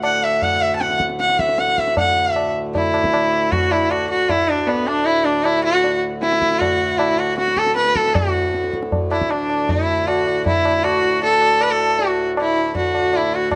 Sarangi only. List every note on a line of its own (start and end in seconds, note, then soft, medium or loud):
0.03 0.25 F#5 loud
0.23 0.44 E5 medium
0.43 0.63 F#5 loud
0.61 0.75 E5 medium
0.75 0.82 A5 medium
0.80 1.00 F#5 medium
1.20 1.41 F#5 medium
1.39 1.61 E5 medium
1.59 1.80 F#5 medium
1.78 1.97 E5 medium
1.98 2.34 F#5 medium
2.34 2.52 E5 medium
2.75 3.53 E4 medium
3.52 3.73 F#4 medium
3.71 3.92 E4 medium
3.91 4.09 F#4 medium
4.10 4.31 F#4 medium
4.29 4.50 E4 medium
4.48 4.68 D4 medium
4.67 4.88 B3 medium
4.87 5.07 D4 medium
5.05 5.26 E4 medium
5.24 5.45 D4 medium
5.44 5.63 E4 medium
5.64 6.00 F#4 loud
6.22 6.61 E4 loud
6.59 6.99 F#4 loud
6.98 7.20 E4 medium
7.18 7.37 F#4 medium
7.38 7.59 F#4 loud
7.58 7.75 A4 loud
7.76 7.97 B4 loud
7.96 8.17 A4 medium
8.15 8.73 F#4 medium
9.11 9.32 E4 medium
9.31 9.72 D4 medium
9.70 10.09 E4 medium
10.07 10.45 F#4 medium
10.46 10.85 E4 medium
10.84 11.22 F#4 loud
11.23 11.63 A4 loud
11.62 11.72 B4 loud
11.70 12.08 A4 medium
12.08 12.28 F#4 medium
12.40 12.74 E4 medium
12.77 13.17 F#4 medium
13.16 13.36 E4 medium
13.34 13.53 F#4 medium